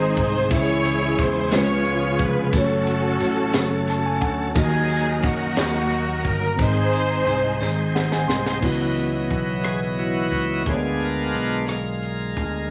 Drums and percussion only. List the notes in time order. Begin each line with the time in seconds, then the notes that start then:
0.17 kick, ride
0.50 kick, ride, tambourine
0.84 ride, tambourine
1.18 kick, ride, tambourine
1.51 snare, ride, tambourine
1.85 ride
2.19 kick, ride
2.53 kick, ride, tambourine
2.86 ride, tambourine
3.20 ride, tambourine
3.53 snare, ride, tambourine
3.87 snare, ride
4.22 kick, ride
4.55 kick, ride, tambourine
4.90 ride, tambourine
5.22 kick, ride, tambourine
5.56 snare, ride, tambourine
5.90 ride
6.25 kick, ride
6.59 kick, ride, tambourine
6.93 ride, tambourine
7.27 ride, tambourine
7.60 snare, tambourine
7.96 snare
8.12 snare
8.30 snare
8.46 snare
8.63 kick, crash
8.97 closed hi-hat
9.30 kick, closed hi-hat
9.64 cross-stick, closed hi-hat
9.98 closed hi-hat
10.32 kick, closed hi-hat
10.66 kick, closed hi-hat
11.01 closed hi-hat
11.35 closed hi-hat
11.68 cross-stick, closed hi-hat
12.03 cross-stick, closed hi-hat
12.37 kick, closed hi-hat